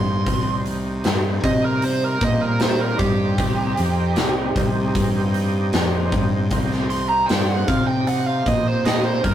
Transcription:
Already playing: fingered electric bass G2, tonewheel organ C4 D#4 G4, lead electric guitar C6
0.25 fingered electric bass C2, tonewheel organ G3 C4 D#4, kick, open hi-hat
0.66 open hi-hat
1.04 fingered electric bass G2, snare, open hi-hat
1.44 fingered electric bass C3, lead electric guitar D#5, kick, open hi-hat
1.65 lead electric guitar A#4
1.82 lead electric guitar C5, open hi-hat
2.04 lead electric guitar A#4
2.21 fingered electric bass A#2, lead electric guitar D#5, kick, open hi-hat
2.41 lead electric guitar A#4
2.60 lead electric guitar C5, snare, open hi-hat
2.80 lead electric guitar A#4
2.98 fingered electric bass G2, lead electric guitar G4, kick, open hi-hat
3.36 fingered electric bass C2, tonewheel organ C4 D#4 G4, kick, open hi-hat
3.77 fingered electric bass F2, open hi-hat
4.16 fingered electric bass C2, snare, open hi-hat
4.56 fingered electric bass C2, kick, open hi-hat
4.95 fingered electric bass G2, kick, open hi-hat
5.34 open hi-hat
5.73 fingered electric bass F2, snare, open hi-hat
6.12 fingered electric bass G2, kick, open hi-hat
6.50 fingered electric bass C2, tonewheel organ C4 D#4 G4 C5, kick, open hi-hat
6.71 snare
6.90 lead electric guitar C6, open hi-hat
7.09 lead electric guitar A#5
7.26 lead electric guitar G5, open hi-hat
7.30 fingered electric bass G2, snare
7.49 lead electric guitar F#5
7.68 fingered electric bass C3, lead electric guitar F5, kick, open hi-hat
7.87 lead electric guitar G5
8.07 lead electric guitar F#5, open hi-hat
8.27 lead electric guitar F5
8.46 fingered electric bass A#2, lead electric guitar D#5, kick, open hi-hat
8.68 lead electric guitar C5
8.85 lead electric guitar D#5, snare, open hi-hat
9.04 lead electric guitar C5
9.24 fingered electric bass G2, lead electric guitar A#4, kick, open hi-hat

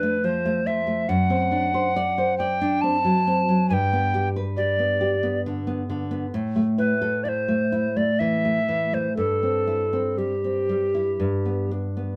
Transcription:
Already playing: nylon-string guitar F2 D4, recorder B4
0.03 nylon-string guitar A3
0.24 nylon-string guitar F3, recorder C5
0.45 nylon-string guitar A3
0.67 nylon-string guitar F3, recorder E5
0.87 nylon-string guitar A3
1.09 nylon-string guitar F#2, recorder F#5
1.30 nylon-string guitar C4
1.52 nylon-string guitar D4
1.74 nylon-string guitar C5
1.96 nylon-string guitar D5
2.18 nylon-string guitar C5
2.38 nylon-string guitar D5, recorder G5
2.61 nylon-string guitar D4
2.81 nylon-string guitar C4, recorder A5
3.05 nylon-string guitar F#3
3.27 nylon-string guitar C4
3.49 nylon-string guitar F#3
3.69 nylon-string guitar G2, recorder G#5
3.73 recorder G5
3.93 nylon-string guitar B3
4.14 nylon-string guitar G4
4.36 nylon-string guitar B4
4.57 nylon-string guitar G4, recorder D5
4.79 nylon-string guitar B3
5.01 nylon-string guitar G4
5.23 nylon-string guitar B3
5.46 nylon-string guitar D3
5.67 nylon-string guitar B3
5.90 nylon-string guitar D3
6.11 nylon-string guitar B3
6.34 nylon-string guitar A2
6.56 nylon-string guitar A3
6.78 nylon-string guitar E4, recorder B4
7.01 nylon-string guitar A4
7.24 nylon-string guitar E4, recorder D5
7.29 recorder C5
7.48 nylon-string guitar A3
7.72 nylon-string guitar E4
7.96 nylon-string guitar A3, recorder D5
8.19 nylon-string guitar E3, recorder E5
8.45 nylon-string guitar A3
8.68 nylon-string guitar E3
8.93 nylon-string guitar A3, recorder C5
9.17 nylon-string guitar G2, recorder A4
9.43 nylon-string guitar C4
9.67 nylon-string guitar E4
9.93 nylon-string guitar C4
10.18 nylon-string guitar G3, recorder G4
10.44 nylon-string guitar C4
10.69 nylon-string guitar G3
10.95 nylon-string guitar E4
11.20 nylon-string guitar G2
11.45 nylon-string guitar B3
11.71 nylon-string guitar D4
11.97 nylon-string guitar B3

